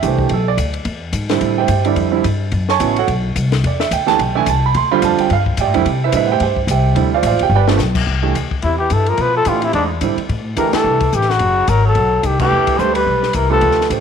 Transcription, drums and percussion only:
0.02 kick, hi-hat pedal, ride
0.18 kick
0.29 kick, ride
0.58 kick, hi-hat pedal, ride
0.74 ride
0.85 kick, ride
1.13 kick, hi-hat pedal, ride
1.29 snare, ride
1.41 kick, ride
1.68 kick, hi-hat pedal, ride
1.85 ride
1.96 kick, ride
2.24 kick, hi-hat pedal, ride
2.52 kick, ride
2.69 snare
2.80 kick, hi-hat pedal, ride
2.96 ride
3.08 kick, ride
3.36 kick, hi-hat pedal, ride
3.52 snare, ride
3.64 kick, ride
3.80 snare
3.91 kick, hi-hat pedal, ride
4.08 snare, ride
4.19 kick, ride
4.46 kick, hi-hat pedal, ride
4.74 kick, ride
5.02 kick, hi-hat pedal, ride
5.18 ride
5.30 kick, ride
5.46 kick
5.57 kick, hi-hat pedal, ride
5.74 ride
5.85 kick, ride
6.12 kick, hi-hat pedal, ride
6.40 kick, ride
6.56 kick
6.68 kick, hi-hat pedal, ride
6.96 kick, ride
7.23 kick, hi-hat pedal, ride
7.39 ride
7.68 snare
7.79 snare, hi-hat pedal
7.95 kick, crash
8.35 kick, hi-hat pedal, ride
8.51 kick
8.62 kick, ride
8.90 kick, hi-hat pedal, ride
9.06 ride
9.17 kick, ride
9.45 kick, hi-hat pedal, ride
9.62 ride
9.73 kick, ride
10.01 kick, hi-hat pedal, ride
10.18 ride
10.29 kick, ride
10.57 kick, hi-hat pedal, ride
10.73 snare, ride
11.00 kick, ride
11.12 hi-hat pedal
11.21 snare
11.30 snare
11.39 kick, ride
11.68 kick, hi-hat pedal, ride
11.95 kick, ride
12.23 kick, hi-hat pedal, ride
12.39 kick, crash
12.67 kick, ride
12.79 kick, hi-hat pedal
12.95 ride
13.07 kick
13.23 snare
13.33 kick, hi-hat pedal, ride
13.61 kick, ride
13.71 snare
13.81 snare
13.90 kick, hi-hat pedal, ride

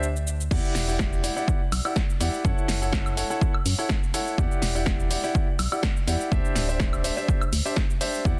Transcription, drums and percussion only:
0.03 cabasa
0.16 cabasa
0.27 cabasa
0.41 cabasa
0.51 kick, crash, cabasa
0.65 cabasa
0.75 snare, open hi-hat, cabasa
0.89 cabasa
0.99 kick, snare, cabasa
1.13 cabasa
1.24 open hi-hat, cabasa
1.37 cabasa
1.48 kick, cabasa
1.72 open hi-hat, cabasa, high woodblock
1.85 cabasa, high woodblock
1.96 kick, snare, cabasa
2.10 cabasa
2.21 open hi-hat, cabasa
2.34 cabasa
2.45 kick, cabasa
2.58 cabasa
2.68 snare, open hi-hat, cabasa
2.82 cabasa
2.93 kick, snare, cabasa
3.06 cabasa, high woodblock
3.17 open hi-hat, cabasa
3.31 cabasa
3.41 kick, cabasa
3.54 high woodblock
3.66 open hi-hat, cabasa
3.79 cabasa
3.89 kick, snare, cabasa
4.03 cabasa
4.14 open hi-hat, cabasa
4.27 cabasa
4.38 kick, cabasa
4.52 cabasa
4.62 snare, open hi-hat, cabasa
4.76 cabasa
4.86 kick, snare, cabasa
5.00 cabasa
5.11 open hi-hat, cabasa
5.24 cabasa
5.35 kick, cabasa
5.59 open hi-hat, cabasa, high woodblock
5.72 cabasa, high woodblock
5.83 kick, snare, cabasa
5.97 cabasa
6.08 open hi-hat, cabasa
6.21 cabasa
6.32 kick, cabasa
6.45 cabasa
6.55 snare, open hi-hat, cabasa
6.69 cabasa
6.80 kick, snare, cabasa
6.93 cabasa, high woodblock
7.04 open hi-hat, cabasa
7.18 cabasa
7.28 kick, cabasa
7.41 cabasa, high woodblock
7.53 open hi-hat, cabasa
7.66 cabasa
7.76 kick, snare, cabasa
7.90 cabasa
8.01 open hi-hat, cabasa
8.14 cabasa
8.25 kick, cabasa

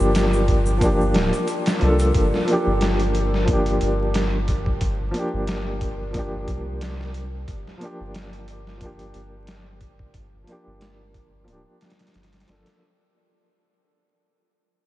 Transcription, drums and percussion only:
0.00 shaker
0.15 snare, closed hi-hat, shaker
0.33 shaker
0.48 kick, closed hi-hat
0.66 shaker
0.81 kick, closed hi-hat, shaker
1.01 shaker
1.14 snare, closed hi-hat
1.33 closed hi-hat, shaker
1.48 closed hi-hat, shaker
1.66 snare, closed hi-hat, shaker
1.81 closed hi-hat
1.99 closed hi-hat, shaker
2.14 kick, closed hi-hat
2.34 snare
2.48 closed hi-hat
2.81 snare, closed hi-hat
3.00 closed hi-hat
3.15 closed hi-hat
3.34 snare
3.48 kick, closed hi-hat
3.66 closed hi-hat
3.81 closed hi-hat
4.14 snare, closed hi-hat
4.48 kick, closed hi-hat
4.66 kick
4.81 kick, closed hi-hat
5.14 closed hi-hat
5.47 snare, closed hi-hat
5.81 kick, closed hi-hat
6.14 kick, closed hi-hat
6.48 kick, closed hi-hat
6.81 snare, closed hi-hat
7.01 snare
7.14 closed hi-hat
7.48 kick, closed hi-hat
7.67 snare
7.81 closed hi-hat
8.14 snare, closed hi-hat
8.33 closed hi-hat
8.48 closed hi-hat
8.67 snare
8.81 kick, closed hi-hat
8.99 closed hi-hat
9.14 closed hi-hat
9.47 snare, closed hi-hat
9.81 kick, closed hi-hat
9.99 kick
10.14 kick, closed hi-hat
10.47 closed hi-hat
10.81 snare, closed hi-hat
11.14 kick, closed hi-hat
11.48 closed hi-hat
11.81 snare, closed hi-hat
11.90 snare, closed hi-hat
11.99 snare, closed hi-hat
12.07 snare, closed hi-hat
12.14 snare, closed hi-hat
12.23 snare, closed hi-hat
12.33 snare, closed hi-hat
12.40 snare, closed hi-hat
12.48 snare, closed hi-hat
12.66 snare, closed hi-hat

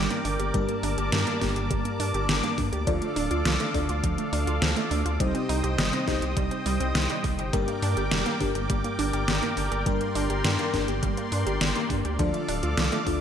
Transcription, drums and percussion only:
0.10 closed hi-hat
0.25 open hi-hat
0.40 closed hi-hat
0.54 kick, closed hi-hat
0.69 closed hi-hat
0.83 open hi-hat
0.98 closed hi-hat
1.12 snare, closed hi-hat
1.27 closed hi-hat
1.41 kick, snare, open hi-hat
1.56 closed hi-hat
1.71 kick, closed hi-hat
1.85 closed hi-hat
2.00 open hi-hat
2.14 closed hi-hat
2.29 snare, closed hi-hat
2.44 closed hi-hat
2.58 kick, open hi-hat
2.73 closed hi-hat
2.87 kick, closed hi-hat
3.02 closed hi-hat
3.16 open hi-hat
3.31 closed hi-hat
3.45 snare, closed hi-hat
3.60 closed hi-hat
3.74 kick, open hi-hat
3.89 closed hi-hat
4.04 kick, closed hi-hat
4.18 closed hi-hat
4.33 open hi-hat
4.47 closed hi-hat
4.62 snare, closed hi-hat
4.77 closed hi-hat
4.91 open hi-hat
5.06 closed hi-hat
5.20 kick, closed hi-hat
5.35 closed hi-hat
5.49 open hi-hat
5.64 closed hi-hat
5.78 snare, closed hi-hat
5.93 closed hi-hat
6.08 kick, snare, open hi-hat
6.22 closed hi-hat
6.37 kick, closed hi-hat
6.51 closed hi-hat
6.66 open hi-hat
6.81 closed hi-hat
6.95 snare, closed hi-hat
7.10 closed hi-hat
7.24 kick, open hi-hat
7.39 closed hi-hat
7.53 kick, closed hi-hat
7.68 closed hi-hat
7.82 open hi-hat
7.97 closed hi-hat
8.11 snare, closed hi-hat
8.26 closed hi-hat
8.41 kick, open hi-hat
8.55 closed hi-hat
8.70 kick, closed hi-hat
8.84 closed hi-hat
8.99 open hi-hat
9.13 closed hi-hat
9.28 snare, closed hi-hat
9.43 closed hi-hat
9.57 open hi-hat
9.72 closed hi-hat
9.86 kick, closed hi-hat
10.01 closed hi-hat
10.15 open hi-hat
10.30 closed hi-hat
10.44 snare, closed hi-hat
10.59 closed hi-hat
10.74 kick, snare, open hi-hat
10.88 closed hi-hat
11.03 kick, closed hi-hat
11.17 closed hi-hat
11.32 open hi-hat
11.47 closed hi-hat
11.61 snare, closed hi-hat
11.76 closed hi-hat
11.90 kick, open hi-hat
12.05 closed hi-hat
12.19 kick, closed hi-hat
12.34 closed hi-hat
12.48 open hi-hat
12.63 closed hi-hat
12.78 snare, closed hi-hat
12.92 closed hi-hat
13.07 kick, open hi-hat

